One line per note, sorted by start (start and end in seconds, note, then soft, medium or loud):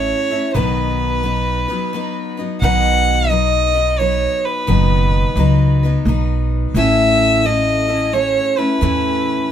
0.00 0.12 A1 medium
0.00 0.31 A3 medium
0.00 0.31 C#4 soft
0.00 0.30 E4 medium
0.00 0.29 A4 medium
0.00 0.57 C#5 medium
0.30 0.55 A3 soft
0.30 0.55 C#4 soft
0.30 0.55 E4 soft
0.30 0.54 A4 soft
0.54 1.64 B1 medium
0.54 1.23 B2 medium
0.54 1.24 D#3 medium
0.54 1.22 F#3 medium
0.54 1.22 B3 medium
0.54 1.24 D#4 medium
0.54 2.38 B4 medium
0.54 1.24 B4 medium
1.23 1.69 F#3 soft
1.23 1.69 B3 medium
1.23 1.69 D#4 medium
1.23 1.67 B4 medium
1.68 1.92 F#3 soft
1.68 1.93 B3 soft
1.68 1.93 D#4 soft
1.68 1.92 B4 medium
1.93 2.38 F#3 medium
1.93 2.38 B3 medium
1.93 2.38 D#4 medium
1.93 2.36 B4 medium
2.37 2.62 F#3 soft
2.37 2.62 B3 soft
2.37 2.62 D#4 soft
2.37 2.61 B4 soft
2.61 4.26 B1 medium
2.61 3.31 B2 medium
2.61 3.31 D#3 medium
2.61 3.29 F#3 medium
2.61 3.30 B3 medium
2.61 3.30 D#4 medium
2.61 3.31 B4 medium
2.61 3.31 F#5 medium
3.29 3.75 F#3 medium
3.29 3.76 B3 medium
3.29 3.75 D#4 medium
3.29 3.74 B4 medium
3.29 4.00 D#5 medium
3.75 3.98 F#3 soft
3.75 3.99 B3 soft
3.75 3.99 D#4 soft
3.75 3.99 B4 soft
3.99 4.67 F#3 soft
3.99 4.67 B3 medium
3.99 4.68 D#4 medium
3.99 4.67 B4 medium
3.99 4.46 C#5 medium
4.45 5.82 B4 medium
4.67 5.23 F#1 medium
4.67 5.37 B2 medium
4.67 5.37 D#3 medium
4.67 5.36 F#3 medium
4.67 5.36 B3 medium
4.67 5.37 D#4 medium
4.67 5.37 B4 medium
5.36 5.95 C#2 medium
5.36 5.82 F#3 medium
5.36 5.83 B3 medium
5.36 5.83 D#4 medium
5.40 5.82 B4 medium
5.83 6.05 F#3 soft
5.83 6.07 B3 soft
5.83 6.07 D#4 medium
5.83 6.06 B4 soft
6.05 6.64 B1 medium
6.05 6.75 F#3 medium
6.05 6.76 B3 medium
6.05 6.76 D#4 medium
6.05 6.76 B4 medium
6.74 8.39 A1 medium
6.74 7.44 A2 medium
6.74 7.44 E3 medium
6.74 7.43 A3 medium
6.74 7.43 C#4 medium
6.74 7.44 E4 medium
6.74 7.45 A4 medium
6.74 7.48 E5 loud
7.44 7.89 A3 medium
7.44 7.89 C#4 soft
7.44 7.88 E4 medium
7.44 7.87 A4 medium
7.44 8.15 D#5 medium
7.88 8.11 A3 soft
7.88 8.12 C#4 soft
7.88 8.13 E4 soft
7.88 8.12 A4 soft
8.12 8.58 A3 soft
8.12 8.58 C#4 medium
8.12 8.57 E4 medium
8.12 8.56 A4 medium
8.12 8.60 C#5 medium
8.57 8.81 A3 soft
8.57 8.82 C#4 soft
8.57 8.81 E4 soft
8.57 8.81 A4 soft
8.57 9.52 B4 medium
8.81 9.36 E2 medium
8.81 9.50 A2 medium
8.81 9.50 E3 medium
8.81 9.49 A3 medium
8.81 9.51 C#4 medium
8.81 9.51 E4 medium
8.81 9.51 A4 medium